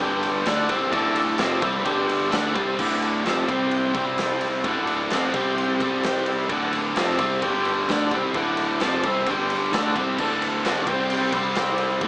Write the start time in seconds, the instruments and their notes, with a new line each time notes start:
0.00 picked electric bass G1, overdriven electric guitar G2 D3 G3, transistor combo organ G4 D5 G5, kick
0.23 ride
0.45 picked electric bass D2, overdriven electric guitar D3 A3 D4, transistor combo organ A4 D5 F#5, snare, ride
0.69 picked electric bass C2, overdriven electric guitar C3 G3 C4, kick, ride
0.91 picked electric bass D1, overdriven electric guitar D2 A2 D3, transistor combo organ A4 D5 E5, kick, ride
1.16 ride
1.38 picked electric bass F1, overdriven electric guitar F2 C3 F3, transistor combo organ A4 D5 E5, snare, ride
1.62 picked electric bass C2, overdriven electric guitar C3 G3 C4, kick, ride
1.83 picked electric bass G1, overdriven electric guitar G2 D3 G3, transistor combo organ G4 D5 G5, kick, ride
2.09 transistor combo organ E5, ride
2.31 picked electric bass D2, overdriven electric guitar D3 A3 D4, transistor combo organ A4 D5 F#5, snare, ride
2.54 picked electric bass C2, overdriven electric guitar C3 G3 C4, transistor combo organ A5, kick, ride
2.79 picked electric bass D1, overdriven electric guitar D2 A2 D3, transistor combo organ A4 D5 F#5, kick, crash
3.02 ride
3.25 picked electric bass F1, overdriven electric guitar F2 C3 F3, transistor combo organ A4 D5 E5, snare, ride
3.48 picked electric bass C2, overdriven electric guitar C3 G3 C4, transistor combo organ G4 C5 G5, kick, ride
3.71 ride
3.94 picked electric bass C2, overdriven electric guitar C3 G3 C4, kick, ride
4.18 transistor combo organ G4 C5, snare, ride
4.23 transistor combo organ A5
4.41 ride
4.63 picked electric bass D1, overdriven electric guitar D2 A2 D3, transistor combo organ A4 D5 F#5, kick, ride
4.87 ride
5.10 picked electric bass F1, overdriven electric guitar F2 C3 F3, transistor combo organ A4 D5 F#5, snare, ride
5.34 picked electric bass C2, overdriven electric guitar C3 G3 C4, transistor combo organ G4 C5 G5, kick, ride
5.58 ride
5.80 picked electric bass C2, overdriven electric guitar C3 G3 C4, kick, ride
5.84 transistor combo organ A5
6.03 transistor combo organ G4 C5 G5, snare, ride
6.26 transistor combo organ E5, ride
6.49 picked electric bass D1, overdriven electric guitar D2 A2 D3, transistor combo organ A4 D5 F#5, kick, ride
6.73 ride
6.94 picked electric bass F1, overdriven electric guitar F2 C3 F3, transistor combo organ A4 D5, snare, ride
6.99 transistor combo organ E5
7.19 picked electric bass C2, overdriven electric guitar C3 G3 C4, kick, ride
7.42 picked electric bass G1, overdriven electric guitar G2 D3 G3, transistor combo organ G4 D5 G5, kick, ride
7.65 ride
7.88 picked electric bass D2, overdriven electric guitar D3 A3 D4, transistor combo organ A4 D5 F#5, snare, ride
8.11 picked electric bass C2, overdriven electric guitar C3 G3 C4, kick, ride
8.34 picked electric bass D1, overdriven electric guitar D2 A2 D3, transistor combo organ A4 D5 F#5, kick, ride
8.57 ride
8.80 picked electric bass F1, overdriven electric guitar F2 C3 F3, transistor combo organ A4 D5 A5, snare, ride
9.04 picked electric bass C2, overdriven electric guitar C3 G3 C4, kick, ride
9.27 picked electric bass G1, overdriven electric guitar G2 D3 G3, transistor combo organ G4 D5 G5, kick, ride
9.50 ride
9.72 picked electric bass D2, overdriven electric guitar D3 A3 D4, transistor combo organ A4 D5, snare, ride
9.77 transistor combo organ F#5
9.96 picked electric bass C2, overdriven electric guitar C3 G3 C4, kick, ride
10.19 picked electric bass D1, overdriven electric guitar D2 A2 D3, transistor combo organ A4 D5 A5, kick, crash
10.42 ride
10.65 picked electric bass F1, overdriven electric guitar F2 C3 F3, transistor combo organ A4 D5 F#5, snare, ride
10.87 picked electric bass C2, overdriven electric guitar C3 G3 C4, transistor combo organ G4 C5 G5, kick, ride
11.10 ride
11.32 picked electric bass C2, overdriven electric guitar C3 G3 C4, kick, ride
11.55 transistor combo organ G4 C5 D5, snare, ride
11.78 ride
12.01 picked electric bass D1, overdriven electric guitar D2 A2 D3, transistor combo organ A4 D5 F#5, kick, ride